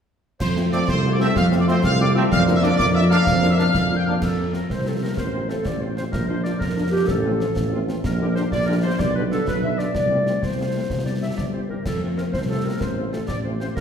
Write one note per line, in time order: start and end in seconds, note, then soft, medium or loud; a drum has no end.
0.40 0.80 F2 medium
0.40 2.27 A4 medium
0.40 0.55 C5 loud
0.40 2.27 C5 medium
0.40 0.49 C6 medium
0.40 concert bass drum medium
0.40 snare medium
0.40 crash medium
0.56 0.62 A3 medium
0.56 0.62 C4 medium
0.56 0.62 F4 medium
0.56 snare medium
0.72 0.78 A3 medium
0.72 0.79 A3 medium
0.72 0.78 C4 medium
0.72 0.78 F4 medium
0.72 0.87 D5 loud
0.72 0.79 D6 medium
0.72 snare medium
0.88 1.28 C2 medium
0.88 1.11 C5 loud
0.88 0.94 C6 medium
0.88 concert bass drum medium
0.88 snare medium
1.03 1.09 A3 medium
1.03 1.09 C4 medium
1.03 1.09 F4 medium
1.12 1.21 D5 medium
1.12 1.20 D6 medium
1.19 1.25 A3 medium
1.19 1.26 A3 medium
1.19 1.25 C4 medium
1.19 1.27 C4 medium
1.19 1.25 F4 medium
1.19 1.35 E5 loud
1.19 1.35 E6 medium
1.19 snare medium
1.35 1.75 F2 loud
1.35 1.47 F5 loud
1.35 1.42 F6 loud
1.35 concert bass drum medium
1.35 snare medium
1.51 1.57 A3 medium
1.51 1.57 C4 medium
1.51 1.57 F4 medium
1.51 snare medium
1.60 1.64 D5 loud
1.60 1.67 D6 medium
1.66 1.72 A3 medium
1.66 1.75 A3 medium
1.66 1.72 C4 medium
1.66 1.75 C4 medium
1.66 1.72 F4 medium
1.66 1.84 C5 loud
1.66 1.74 C6 medium
1.66 snare medium
1.83 2.23 C2 loud
1.83 1.99 F5 loud
1.83 1.91 F6 loud
1.83 concert bass drum medium
1.83 snare medium
1.98 2.04 A3 medium
1.98 2.04 C4 medium
1.98 2.04 F4 medium
1.98 2.08 D5 loud
1.98 2.15 D6 loud
2.14 2.20 A3 medium
2.14 2.22 A3 medium
2.14 2.21 C4 medium
2.14 2.22 C4 loud
2.14 2.20 F4 medium
2.14 2.24 E5 loud
2.14 2.21 E6 medium
2.31 2.71 F2 loud
2.31 4.02 A#4 loud
2.31 4.02 D5 loud
2.31 2.43 F5 loud
2.31 2.39 F6 loud
2.31 concert bass drum medium
2.31 snare medium
2.46 2.52 A#3 medium
2.46 2.53 D4 medium
2.46 2.53 F4 medium
2.46 snare medium
2.55 2.63 E5 loud
2.55 2.60 E6 medium
2.62 2.68 A#3 medium
2.62 2.70 A#3 medium
2.62 2.68 D4 medium
2.62 2.69 D4 medium
2.62 2.68 F4 medium
2.62 2.77 D5 loud
2.62 2.69 D6 medium
2.62 snare medium
2.78 3.18 F2 loud
2.78 2.85 D5 loud
2.78 2.97 D6 loud
2.78 concert bass drum medium
2.78 snare medium
2.94 3.00 A#3 medium
2.94 3.00 D4 medium
2.94 3.00 F4 medium
2.94 3.02 E5 loud
2.94 3.09 E6 loud
3.09 3.15 A#3 medium
3.09 3.17 A#3 loud
3.09 3.16 D4 medium
3.09 3.18 D4 medium
3.09 3.15 F4 medium
3.09 3.47 F5 loud
3.09 3.47 F6 loud
3.09 snare medium
3.26 3.66 F2 loud
3.26 concert bass drum medium
3.26 snare medium
3.40 3.47 A#3 medium
3.40 3.47 D4 medium
3.40 3.47 F4 medium
3.40 snare medium
3.50 3.58 E5 loud
3.50 3.56 E6 medium
3.57 3.63 A#3 medium
3.57 3.64 A#3 medium
3.57 3.63 D4 medium
3.57 3.64 D4 medium
3.57 3.63 F4 medium
3.57 3.98 F5 loud
3.57 3.98 F6 loud
3.57 snare medium
3.74 4.14 F2 medium
3.74 concert bass drum medium
3.74 snare medium
3.90 3.96 A#3 medium
3.90 3.96 D4 medium
3.90 3.96 F4 medium
3.96 4.02 G5 loud
3.96 4.07 G6 medium
4.05 4.12 A#3 medium
4.05 4.14 A#3 medium
4.05 4.12 D4 medium
4.05 4.15 D4 medium
4.05 4.12 F4 medium
4.05 4.12 F5 medium
4.05 4.22 F6 medium
4.21 4.61 F2 medium
4.21 4.51 A4 medium
4.21 concert bass drum medium
4.21 snare medium
4.21 crash soft
4.38 4.44 C3 soft
4.38 4.44 F3 soft
4.38 4.44 C4 soft
4.38 4.43 F4 soft
4.52 4.59 C3 soft
4.52 4.59 F3 soft
4.52 4.59 C4 soft
4.52 4.58 F4 soft
4.52 4.68 A#4 medium
4.52 snare soft
4.70 5.09 C2 medium
4.70 4.86 C5 medium
4.70 concert bass drum medium
4.70 snare medium
4.85 4.91 C3 soft
4.85 4.91 F3 soft
4.85 4.91 C4 soft
4.85 4.92 F4 soft
4.85 4.93 A4 medium
5.00 5.07 C3 soft
5.00 5.07 F3 soft
5.00 5.07 C4 soft
5.00 5.06 F4 soft
5.00 5.16 A#4 medium
5.17 5.57 A1 medium
5.17 5.47 C5 medium
5.17 concert bass drum medium
5.17 snare medium
5.33 5.39 C3 medium
5.33 5.39 F3 medium
5.33 5.39 C4 medium
5.33 5.39 F4 soft
5.48 5.54 C3 soft
5.48 5.54 F3 soft
5.48 5.54 C4 medium
5.48 5.55 F4 soft
5.48 5.65 A4 medium
5.48 snare soft
5.65 6.05 A1 medium
5.65 5.81 D5 medium
5.65 concert bass drum medium
5.65 snare medium
5.80 5.87 C3 soft
5.80 5.87 F3 soft
5.80 5.87 C4 soft
5.80 5.87 F4 soft
5.80 5.95 C5 medium
5.96 6.03 C3 soft
5.96 6.03 F3 soft
5.96 6.03 C4 soft
5.96 6.02 F4 medium
5.96 6.03 C5 medium
5.96 snare soft
6.12 6.52 A#1 medium
6.12 6.27 A#4 medium
6.12 concert bass drum medium
6.12 snare medium
6.28 6.34 F3 medium
6.28 6.35 D4 medium
6.28 6.35 F4 soft
6.28 6.43 C5 medium
6.43 6.51 F3 medium
6.43 6.51 D4 medium
6.43 6.50 F4 medium
6.43 6.59 D5 medium
6.43 snare soft
6.59 6.99 F2 medium
6.59 6.89 A#4 medium
6.59 concert bass drum medium
6.59 snare medium
6.76 6.82 F3 medium
6.76 6.82 D4 medium
6.76 6.82 F4 medium
6.91 6.98 F3 medium
6.91 6.98 D4 medium
6.91 6.98 F4 medium
6.91 7.07 G4 medium
7.07 7.43 A1 medium
7.07 7.87 A4 medium
7.07 concert bass drum medium
7.07 snare medium
7.24 7.30 F3 medium
7.24 7.31 A3 medium
7.24 7.30 C4 medium
7.24 7.30 F4 medium
7.40 7.46 F3 medium
7.40 7.46 A3 medium
7.40 7.46 C4 medium
7.40 7.46 F4 medium
7.40 snare medium
7.55 7.95 A1 medium
7.55 concert bass drum medium
7.55 snare medium
7.72 7.78 F3 medium
7.72 7.78 A3 medium
7.72 7.78 C4 medium
7.72 7.78 F4 medium
7.88 7.94 F3 medium
7.88 7.93 A3 medium
7.88 7.94 C4 medium
7.88 7.94 F4 medium
7.88 snare medium
8.04 8.44 A#1 medium
8.04 8.34 A#4 loud
8.04 concert bass drum medium
8.04 snare medium
8.04 crash soft
8.19 8.25 D3 medium
8.19 8.25 G3 medium
8.19 8.25 D4 medium
8.19 8.26 G4 medium
8.36 8.42 D3 medium
8.36 8.42 G3 medium
8.36 8.42 D4 medium
8.36 8.42 G4 medium
8.36 8.43 C5 loud
8.36 snare medium
8.51 8.91 A#1 medium
8.51 8.67 D5 loud
8.51 concert bass drum medium
8.51 snare medium
8.66 8.73 D3 medium
8.66 8.73 G3 medium
8.66 8.73 D4 medium
8.66 8.73 G4 medium
8.66 8.74 A#4 loud
8.83 8.88 D3 medium
8.83 8.88 G3 medium
8.83 8.88 D4 medium
8.83 8.90 G4 medium
8.83 8.98 C5 loud
8.98 9.38 B1 medium
8.98 9.15 D5 loud
8.98 concert bass drum medium
8.98 snare medium
9.15 9.20 D3 medium
9.15 9.21 G3 medium
9.15 9.21 D4 medium
9.15 9.22 F4 medium
9.15 9.22 B4 medium
9.31 9.37 D3 medium
9.31 9.37 G3 medium
9.31 9.36 D4 medium
9.31 9.37 F4 medium
9.31 9.46 A4 medium
9.31 snare soft
9.45 9.86 B1 medium
9.45 9.62 B4 medium
9.45 concert bass drum medium
9.45 snare medium
9.63 9.69 D3 medium
9.63 9.68 G3 medium
9.63 9.68 D4 medium
9.63 9.69 F4 medium
9.63 9.78 E5 medium
9.78 9.84 D3 medium
9.78 9.84 G3 soft
9.78 9.84 D4 soft
9.78 9.85 F4 medium
9.78 9.94 D5 medium
9.78 snare soft
9.94 10.34 C2 medium
9.94 10.39 D5 medium
9.94 concert bass drum medium
9.94 snare medium
10.10 10.16 F3 soft
10.10 10.16 A3 soft
10.10 10.16 C4 medium
10.10 10.17 F4 soft
10.25 10.31 F3 soft
10.25 10.31 A3 soft
10.25 10.31 C4 soft
10.25 10.32 F4 soft
10.25 snare soft
10.42 10.82 C2 medium
10.42 11.06 C5 medium
10.42 concert bass drum medium
10.42 snare medium
10.57 10.63 F3 soft
10.57 10.63 A3 soft
10.57 10.63 C4 soft
10.57 10.64 F4 soft
10.73 10.79 F3 soft
10.73 10.79 A3 soft
10.73 10.79 C4 soft
10.73 10.81 F4 soft
10.90 11.30 C2 medium
10.90 concert bass drum medium
10.90 snare medium
11.04 11.10 E3 soft
11.04 11.10 G3 soft
11.04 11.10 C4 soft
11.04 11.12 G4 soft
11.04 11.13 D5 medium
11.21 11.27 E3 soft
11.21 11.27 G3 soft
11.21 11.27 C4 soft
11.21 11.29 G4 soft
11.21 11.37 E5 medium
11.37 11.77 G1 medium
11.37 11.44 D5 medium
11.37 concert bass drum medium
11.37 snare medium
11.53 11.59 E3 soft
11.53 11.59 G3 soft
11.53 11.59 C4 soft
11.53 11.60 G4 soft
11.53 11.60 C5 medium
11.69 11.75 E3 soft
11.69 11.75 G3 soft
11.69 11.75 C4 soft
11.69 11.76 G4 soft
11.69 11.84 A#4 medium
11.86 12.25 F2 medium
11.86 12.00 A4 medium
11.86 concert bass drum medium
11.86 snare medium
11.86 crash soft
12.01 12.07 F3 medium
12.01 12.07 A3 medium
12.01 12.07 C4 medium
12.01 12.08 F4 soft
12.16 12.23 F3 medium
12.16 12.23 A3 soft
12.16 12.23 C4 medium
12.16 12.23 F4 soft
12.16 12.24 A#4 medium
12.16 snare soft
12.33 12.73 C2 medium
12.33 12.40 C5 medium
12.33 concert bass drum medium
12.33 snare medium
12.49 12.55 F3 soft
12.49 12.55 A3 soft
12.49 12.55 C4 medium
12.49 12.55 F4 soft
12.49 12.64 A4 medium
12.64 12.70 F3 soft
12.64 12.70 A3 soft
12.64 12.70 C4 soft
12.64 12.71 F4 soft
12.64 12.81 A#4 medium
12.81 13.21 A1 medium
12.81 13.13 C5 medium
12.81 concert bass drum medium
12.81 snare medium
12.96 13.02 F3 medium
12.96 13.02 A3 medium
12.96 13.02 C4 medium
12.96 13.03 F4 soft
13.12 13.18 F3 medium
13.12 13.18 A3 medium
13.12 13.18 C4 medium
13.12 13.19 F4 medium
13.12 13.20 A4 medium
13.12 snare soft
13.28 13.69 A1 medium
13.28 13.35 D5 loud
13.28 concert bass drum medium
13.28 snare medium
13.44 13.50 F3 medium
13.44 13.50 A3 medium
13.44 13.50 C4 medium
13.44 13.50 F4 medium
13.44 13.51 C5 medium
13.60 13.66 F3 medium
13.60 13.66 A3 medium
13.60 13.66 C4 medium
13.60 13.66 F4 medium
13.60 13.68 C5 medium
13.60 snare soft
13.76 13.80 A#1 medium
13.76 13.80 A#4 medium
13.76 concert bass drum medium
13.76 snare medium